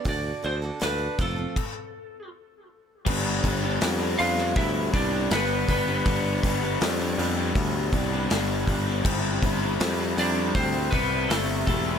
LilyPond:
<<
  \new Staff \with { instrumentName = "Lead electric guitar" } { \time 4/4 \key g \mixolydian \tempo 4 = 80 d''8 c''8 b'8 a'4. r4 | r4. <f' f''>8 <e' e''>8 <d' d''>8 <b b'>8 <b b'>8~ | <b b'>4 r2. | r4. <d' d''>8 <c' c''>8 <b b'>8 <a a'>8 <a a'>8 | }
  \new Staff \with { instrumentName = "Steel-string acoustic guitar" } { \time 4/4 \key g \mixolydian <d d' fis' a'>8 <d d' fis' a'>16 <d' fis' a'>16 <d d' fis' a'>8 <f a c' f' a'>16 <c' f' a'>16 r2 | r1 | r1 | r1 | }
  \new Staff \with { instrumentName = "Overdriven electric guitar" } { \time 4/4 \key g \mixolydian r1 | <g b d' g'>8 <g b d' g'>16 <b d' g'>16 <g b d' g'>16 <b d' g'>16 <g b d' g'>16 <b d' g'>8. <g b d' g'>16 <b d' g'>16 <g b d' g'>8 <g b d' g'>16 <b d' g'>16 | <g b d' g'>8 <g b d' g'>16 <b d' g'>16 <g b d' g'>16 <b d' g'>16 <g b d' g'>16 <b d' g'>8. <g b d' g'>16 <b d' g'>16 <g b d' g'>8 <g b d' g'>16 <b d' g'>16 | <g c' e' g'>8 <g c' e' g'>16 <c' e' g'>16 <g c' e' g'>16 <c' e' g'>16 <g c' e' g'>16 <c' e' g'>8. <g c' e' g'>16 <c' e' g'>16 <g c' e' g'>8 <g c' e' g'>16 <c' e' g'>16 | }
  \new Staff \with { instrumentName = "Picked electric bass" } { \clef bass \time 4/4 \key g \mixolydian d,8 d,8 d,8 f,,8 r2 | g,,8 g,,8 f,8 f,8 d,8 c,8 g,,8 g,,8 | g,,8 g,,8 f,8 f,8 d,8 c,8 g,,8 g,,8 | g,,8 g,,8 f,8 f,8 d,8 c,8 g,,8 e,,8 | }
  \new DrumStaff \with { instrumentName = "Drums" } \drummode { \time 4/4 <hho bd>4 <hho sn>8 <bd sn>8 <cymc bd>4 r4 | <cymc bd>8 <hho bd>8 <hho sn>8 hho16 sn16 <hho bd>8 <hho bd>8 <hho sn>8 <hho bd>8 | <hho bd>8 <hho bd>8 <hho sn>8 hho8 <hho bd>8 <hho bd>8 <hho sn>8 <hho bd>8 | <cymc bd>8 <hho bd>8 <hho sn>8 hho8 <hho bd>8 <hho bd>8 <hho sn>8 <hho bd>8 | }
>>